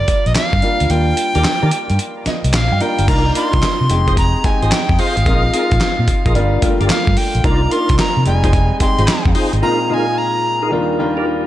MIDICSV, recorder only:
0, 0, Header, 1, 2, 480
1, 0, Start_track
1, 0, Tempo, 545455
1, 790, Time_signature, 4, 2, 24, 8
1, 10091, End_track
2, 0, Start_track
2, 0, Title_t, "Recorder"
2, 0, Program_c, 0, 74
2, 0, Note_on_c, 0, 74, 95
2, 237, Note_on_c, 0, 75, 87
2, 250, Note_off_c, 0, 74, 0
2, 311, Note_off_c, 0, 75, 0
2, 316, Note_on_c, 0, 77, 107
2, 796, Note_on_c, 0, 79, 114
2, 810, Note_off_c, 0, 77, 0
2, 1753, Note_off_c, 0, 79, 0
2, 2237, Note_on_c, 0, 77, 99
2, 2477, Note_on_c, 0, 79, 92
2, 2490, Note_off_c, 0, 77, 0
2, 2714, Note_on_c, 0, 82, 101
2, 2727, Note_off_c, 0, 79, 0
2, 2949, Note_off_c, 0, 82, 0
2, 2954, Note_on_c, 0, 84, 117
2, 3637, Note_off_c, 0, 84, 0
2, 3677, Note_on_c, 0, 82, 116
2, 3920, Note_on_c, 0, 80, 98
2, 3933, Note_off_c, 0, 82, 0
2, 4157, Note_on_c, 0, 79, 97
2, 4170, Note_off_c, 0, 80, 0
2, 4397, Note_on_c, 0, 77, 96
2, 4410, Note_off_c, 0, 79, 0
2, 5833, Note_off_c, 0, 77, 0
2, 6074, Note_on_c, 0, 77, 92
2, 6314, Note_on_c, 0, 79, 96
2, 6327, Note_off_c, 0, 77, 0
2, 6553, Note_on_c, 0, 82, 107
2, 6566, Note_off_c, 0, 79, 0
2, 6793, Note_on_c, 0, 84, 115
2, 6806, Note_off_c, 0, 82, 0
2, 7031, Note_off_c, 0, 84, 0
2, 7035, Note_on_c, 0, 82, 93
2, 7256, Note_off_c, 0, 82, 0
2, 7275, Note_on_c, 0, 80, 103
2, 7719, Note_off_c, 0, 80, 0
2, 7754, Note_on_c, 0, 84, 101
2, 8199, Note_off_c, 0, 84, 0
2, 8472, Note_on_c, 0, 82, 111
2, 8717, Note_off_c, 0, 82, 0
2, 8717, Note_on_c, 0, 82, 98
2, 8746, Note_on_c, 0, 80, 107
2, 8754, Note_off_c, 0, 82, 0
2, 8958, Note_on_c, 0, 82, 95
2, 8972, Note_off_c, 0, 80, 0
2, 9434, Note_off_c, 0, 82, 0
2, 10091, End_track
0, 0, End_of_file